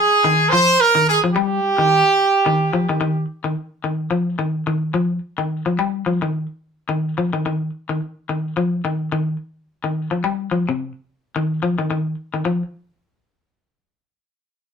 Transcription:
0.00 0.48 G#4 loud
0.24 0.48 D#3 medium
0.50 0.76 F3 medium
0.50 0.79 C5 loud
0.80 1.07 A#4 loud
0.95 1.19 D#3 medium
1.07 1.20 G#4 medium
1.24 1.34 F3 medium
1.34 1.59 G3 loud
1.34 3.24 G4 loud
1.78 2.02 D#3 medium
2.46 2.70 D#3 loud
2.73 2.87 F3 medium
2.89 3.00 D#3 medium
3.01 3.25 D#3 medium
3.44 3.55 D#3 medium
3.84 4.08 D#3 medium
4.11 4.35 F3 medium
4.39 4.63 D#3 medium
4.67 4.91 D#3 medium
4.94 5.18 F3 medium
5.38 5.62 D#3 medium
5.66 5.77 F3 medium
5.79 6.02 G3 medium
6.06 6.20 F3 medium
6.22 6.46 D#3 medium
6.89 7.13 D#3 medium
7.18 7.31 F3 medium
7.33 7.44 D#3 medium
7.46 7.69 D#3 medium
7.89 8.00 D#3 medium
8.29 8.53 D#3 medium
8.57 8.80 F3 medium
8.85 9.08 D#3 medium
9.12 9.36 D#3 medium
9.84 10.07 D#3 medium
10.11 10.22 F3 medium
10.24 10.48 G3 medium
10.51 10.65 F3 medium
10.69 10.92 C3 medium
11.36 11.59 D#3 medium
11.63 11.76 F3 medium
11.78 11.89 D#3 medium
11.90 12.14 D#3 medium
12.34 12.44 D#3 medium
12.45 12.62 F3 medium

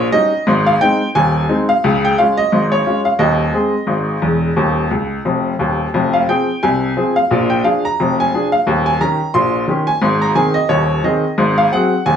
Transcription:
0.12 0.31 G3 soft
0.12 0.31 C#4 soft
0.12 0.32 D#4 soft
0.12 0.56 D#5 medium
0.47 0.76 G#1 medium
0.47 0.76 G#2 medium
0.67 0.81 F5 medium
0.81 1.00 G#3 soft
0.81 1.00 C4 soft
0.81 1.01 D#4 soft
0.81 1.08 G5 medium
1.15 1.44 D#1 medium
1.15 1.44 D#2 medium
1.15 1.58 G#5 medium
1.49 1.68 G#3 soft
1.49 1.68 C4 soft
1.49 1.68 D#4 soft
1.69 2.01 F5 medium
1.84 2.13 C#2 medium
1.84 2.13 C#3 medium
2.05 2.18 G5 medium
2.18 2.37 G#3 soft
2.18 2.38 C#4 soft
2.18 2.38 F4 soft
2.18 2.37 F5 medium
2.38 2.65 D#5 medium
2.52 2.81 G#1 medium
2.52 2.81 G#2 medium
2.72 2.99 C#5 medium
2.86 3.05 G#3 soft
2.86 3.05 C#4 soft
2.86 3.05 F4 soft
3.05 3.20 F5 medium
3.19 3.48 D#1 medium
3.19 3.48 D#2 medium
3.19 5.21 D#5 medium
3.53 3.72 G#3 soft
3.53 3.73 C4 soft
3.53 3.73 G#4 soft
3.87 4.17 G#1 medium
3.87 4.17 G#2 soft
4.22 4.50 E1 medium
4.22 4.50 E2 medium
4.57 4.86 D#1 medium
4.57 4.86 D#2 medium
4.91 5.17 C#2 medium
5.25 5.51 F1 soft
5.25 5.51 F2 medium
5.59 5.85 D#1 medium
5.59 5.85 D#2 medium
5.94 6.23 F1 medium
5.94 6.23 F2 medium
6.13 6.28 F5 medium
6.28 6.47 F3 soft
6.28 6.48 C4 soft
6.28 6.48 G#4 soft
6.28 6.61 G5 medium
6.63 6.92 C2 medium
6.63 6.91 C3 medium
6.63 7.13 G#5 medium
6.97 7.15 F3 soft
6.97 7.15 C4 soft
6.97 7.16 G#4 soft
7.16 7.48 F5 medium
7.31 7.59 A#1 medium
7.31 7.59 A#2 medium
7.50 7.64 G5 medium
7.64 7.83 F3 soft
7.64 7.83 D4 soft
7.64 7.83 G#4 soft
7.64 7.84 F5 medium
7.85 8.17 A#5 medium
8.00 8.28 F1 medium
8.00 8.28 F2 medium
8.20 8.46 G#5 medium
8.34 8.52 F3 soft
8.34 8.53 D4 soft
8.34 8.53 G#4 soft
8.52 8.66 F5 medium
8.67 8.95 D#1 medium
8.67 8.96 D#2 medium
8.86 9.00 G#5 medium
9.01 9.19 D#3 soft
9.01 9.20 C#4 soft
9.01 9.19 G4 soft
9.01 9.33 A#5 medium
9.34 9.63 A#1 medium
9.34 9.63 A#2 medium
9.34 9.85 C6 medium
9.68 9.87 D#3 soft
9.68 9.87 C#4 soft
9.68 9.87 G4 soft
9.87 10.15 G#5 medium
10.02 10.31 G#1 medium
10.02 10.31 G#2 medium
10.22 10.36 A#5 medium
10.35 10.54 D#3 soft
10.35 10.54 C4 soft
10.35 10.55 G#4 soft
10.35 10.56 G#5 medium
10.54 10.69 D#5 medium
10.69 10.98 D#1 medium
10.69 10.98 D#2 medium
10.69 11.02 C#5 medium
11.04 11.23 D#3 soft
11.04 11.23 C4 soft
11.04 11.23 G#4 soft
11.04 11.55 D#5 medium
11.38 11.67 G#1 medium
11.38 11.67 G#2 medium
11.58 11.72 F5 medium
11.73 11.91 F#3 soft
11.73 11.92 C4 soft
11.73 11.92 G#4 soft
11.73 12.05 F#5 medium
12.06 12.16 D#1 medium
12.06 12.16 D#2 medium
12.06 12.16 G#5 medium

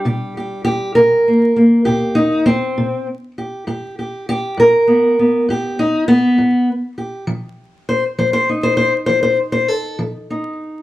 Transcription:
0.00 1.27 G3 soft
0.05 0.59 C3 medium
0.05 0.37 G4 medium
0.37 0.64 G4 medium
0.65 0.95 G4 medium
0.95 1.51 C3 medium
0.95 1.85 A#4 loud
1.28 1.55 A#3 soft
1.56 2.45 A#3 soft
1.85 2.40 C3 medium
1.85 2.16 G4 medium
2.15 2.46 D#4 medium
2.46 3.06 C4 loud
2.78 3.31 C3 medium
3.38 3.64 G4 soft
3.67 4.21 G2 medium
3.67 3.97 G4 medium
3.99 4.28 G4 soft
4.29 4.58 G4 loud
4.57 5.11 G2 medium
4.57 5.49 A#4 loud
4.87 5.17 B3 soft
5.19 6.07 B3 soft
5.49 6.02 G2 medium
5.49 5.79 G4 medium
5.79 6.08 D#4 medium
6.08 6.68 B3 loud
6.38 6.92 G2 medium
6.98 7.24 G4 soft
7.27 7.82 F3 medium
7.89 8.03 C5 loud
8.18 8.72 F3 medium
8.18 8.32 C5 medium
8.33 8.48 C5 loud
8.49 10.29 D#4 soft
8.63 8.76 C5 loud
8.77 8.92 C5 loud
9.06 9.63 F3 medium
9.06 9.22 C5 medium
9.23 9.38 C5 medium
9.52 9.68 C5 medium
9.68 9.98 A4 medium
9.99 10.52 F3 medium
10.30 10.82 D#4 soft

